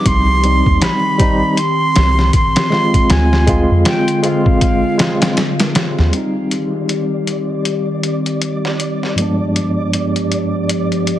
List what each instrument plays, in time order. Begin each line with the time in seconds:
Already playing: tine electric piano G3 C4 D#4, ambient pad G4
0.06 sub bass C2, ambient pad D#3 C4, flute C6, kick, closed hi-hat
0.43 tine electric piano G3 C4 D#4, closed hi-hat
0.66 sub bass D#2, kick
0.82 flute B5, snare, closed hi-hat
1.18 tine electric piano G3 C4 D#4, kick, closed hi-hat
1.57 flute C6, closed hi-hat
1.96 sub bass C2, snare, closed hi-hat
2.19 snare
2.33 flute C6, kick, closed hi-hat
2.56 snare, closed hi-hat
2.70 tine electric piano G#3 C4 F4, snare
2.94 kick, closed hi-hat
3.09 sub bass D2, ambient pad D3 G#3 C4 F4, flute G#5, snare, closed hi-hat
3.33 snare
3.46 tine electric piano G#3 C4 F4, kick, closed hi-hat
3.71 sub bass F2
3.85 flute G5, snare, closed hi-hat
4.08 closed hi-hat
4.22 tine electric piano G#3 C4 F4, flute F5, closed hi-hat
4.46 kick
4.61 kick, closed hi-hat
4.98 tine electric piano G#3 C4 F4, snare, closed hi-hat
5.20 tine electric piano G#3 C4 F4, snare, closed hi-hat
5.37 snare, closed hi-hat
5.60 snare, closed hi-hat
5.75 snare, closed hi-hat
5.99 sub bass D#2, snare
6.11 ambient pad D#3 G3 C4 G4, tine electric piano G3 C4, synth texture D5, closed hi-hat
6.17 tine electric piano D#4
6.51 closed hi-hat
6.89 closed hi-hat
7.27 closed hi-hat
7.65 closed hi-hat
8.03 closed hi-hat
8.26 closed hi-hat
8.42 closed hi-hat
8.65 snare
8.80 closed hi-hat
9.03 snare
9.15 tine electric piano G2 F3 G#3, ambient pad F3 B3 G4, closed hi-hat
9.20 tine electric piano B3 D4
9.56 closed hi-hat
9.93 closed hi-hat
10.16 closed hi-hat
10.32 closed hi-hat
10.69 closed hi-hat
10.92 closed hi-hat
11.07 closed hi-hat